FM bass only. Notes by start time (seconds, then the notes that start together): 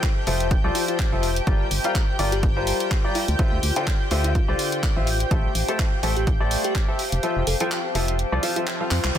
0.27 F1
0.64 C2
1.12 F1
1.47 G1
1.71 G1
2.19 G1
3.28 D2
3.52 D2
3.63 D2
4.11 D2
4.48 C2
4.96 A1
5.31 A1
5.55 A1
6.03 A1
7.12 F1
7.36 F1
7.47 F1
7.95 F1
8.32 C2
8.91 F2
9.04 C2